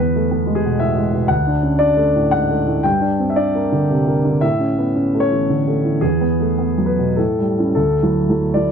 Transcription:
0.00 1.27 E2 soft
0.00 0.26 B3 soft
0.00 0.57 B4 medium
0.16 0.32 A3 soft
0.31 0.58 B3 soft
0.46 0.74 G#3 soft
0.55 0.81 G#4 medium
0.65 0.92 B2 soft
0.79 0.98 A2 soft
0.79 1.30 E5 medium
0.96 1.24 G#3 soft
1.13 1.31 B2 soft
1.28 2.80 D2 soft
1.28 1.80 F#5 medium
1.47 1.74 D4 soft
1.63 1.81 C#4 soft
1.79 2.08 D4 soft
1.79 2.32 D5 medium
1.97 2.25 A3 soft
2.16 2.44 A2 soft
2.31 2.51 G#2 soft
2.31 2.84 F#5 medium
2.49 2.78 A3 soft
2.67 2.85 A2 soft
2.83 4.38 G2 soft
2.83 3.30 G5 medium
3.01 3.30 D4 soft
3.20 3.37 C4 soft
3.30 3.37 E5 soft
3.36 3.65 D4 soft
3.36 3.89 D5 medium
3.55 3.83 A#3 soft
3.72 4.00 D3 soft
3.90 4.07 C3 soft
4.07 4.36 A#3 soft
4.25 4.43 D3 soft
4.41 5.99 A2 soft
4.41 5.22 E5 medium
4.60 4.89 C#4 soft
4.78 4.96 B3 soft
4.96 5.24 C#4 soft
5.15 5.43 A3 soft
5.20 6.01 C#5 medium
5.31 5.60 E3 soft
5.50 5.67 D3 soft
5.68 5.96 A3 soft
5.85 6.03 E3 soft
6.01 7.14 E2 soft
6.01 6.87 G#4 medium
6.21 6.51 B3 soft
6.41 6.59 A3 soft
6.58 6.90 B3 soft
6.78 7.10 F#3 soft
6.86 7.17 B4 soft
6.99 7.18 B2 soft
7.16 7.75 A2 soft
7.16 7.73 A4 soft
7.39 7.70 G3 soft
7.59 7.75 C#4 soft
7.59 7.75 E4 soft
7.75 8.02 D2 soft
7.75 8.55 A4 soft
8.02 8.27 F#3 soft
8.02 8.26 A3 soft
8.02 8.26 E4 soft
8.29 8.53 F#3 soft
8.29 8.53 A3 soft
8.29 8.53 E4 soft
8.54 8.72 F#3 soft
8.54 8.72 A3 soft
8.54 8.72 E4 soft
8.54 8.72 D5 soft

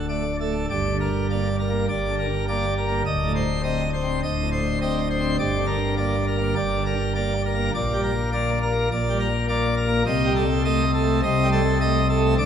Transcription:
0.00 0.66 D1 medium
0.00 0.66 D2 medium
0.09 0.23 A3 medium
0.09 0.36 D5 medium
0.40 0.54 A3 medium
0.40 0.66 A4 medium
0.70 1.87 G1 medium
0.70 1.87 G2 medium
0.70 0.96 D5 medium
0.91 1.08 D3 medium
1.00 1.26 A#4 medium
1.30 1.47 A#3 medium
1.30 1.56 D5 medium
1.59 1.85 A#4 medium
1.69 1.86 A#3 medium
1.89 3.03 G1 medium
1.89 3.03 G2 medium
1.89 2.15 D5 medium
2.09 2.26 D3 medium
2.19 2.45 A#4 medium
2.48 2.65 A#3 medium
2.48 2.74 D5 medium
2.78 3.02 A#4 medium
2.86 3.03 A#3 medium
3.06 4.21 D1 medium
3.06 4.21 D2 medium
3.06 3.32 D#5 medium
3.26 3.43 A2 medium
3.36 3.61 C5 medium
3.63 3.81 C4 medium
3.63 3.90 D#5 medium
3.94 4.20 C5 medium
4.03 4.21 C4 medium
4.23 5.37 D1 medium
4.23 5.37 D2 medium
4.23 4.49 D#5 medium
4.43 4.60 A2 medium
4.52 4.78 C5 medium
4.82 4.99 C4 medium
4.82 5.08 D#5 medium
5.10 5.35 C5 medium
5.20 5.37 C4 medium
5.39 6.54 G1 medium
5.39 6.54 G2 medium
5.39 5.66 D5 loud
5.58 5.76 D3 medium
5.67 5.94 A#4 medium
5.97 6.15 A#3 medium
5.97 6.24 D5 medium
6.27 6.54 A#4 medium
6.38 6.55 A#3 medium
6.56 7.70 G1 medium
6.56 7.70 G2 medium
6.56 6.83 D5 medium
6.76 6.94 D3 medium
6.86 7.12 A#4 medium
7.15 7.33 A#3 medium
7.15 7.42 D5 medium
7.45 7.70 A#4 medium
7.54 7.71 A#3 medium
7.75 8.90 A#1 medium
7.75 8.89 A#2 loud
7.75 8.01 D5 loud
7.94 8.11 G3 medium
8.03 8.29 A#4 medium
8.33 8.50 A#3 medium
8.33 8.59 D5 medium
8.62 8.88 A#4 medium
8.71 8.88 A#3 medium
8.91 10.04 A#1 medium
8.91 10.03 A#2 medium
8.91 9.17 D5 medium
9.10 9.27 G3 medium
9.20 9.46 A#4 medium
9.49 9.66 A#3 medium
9.49 9.75 D5 medium
9.77 10.02 A#4 medium
9.87 10.04 A#3 medium
10.07 11.22 C2 loud
10.07 11.21 C3 loud
10.07 10.33 D#5 loud
10.26 10.43 G3 medium
10.36 10.62 A4 medium
10.65 10.82 A3 medium
10.65 10.91 D#5 medium
10.94 11.20 A4 medium
11.03 11.21 A3 medium
11.23 12.36 C2 loud
11.23 12.36 C3 loud
11.23 11.49 D#5 loud
11.43 11.60 G3 medium
11.52 11.78 A4 loud
11.81 11.98 A3 medium
11.81 12.07 D#5 medium
12.09 12.34 A4 medium
12.19 12.35 A3 medium
12.38 12.46 D2 loud
12.38 12.46 D3 loud
12.38 12.46 D5 loud

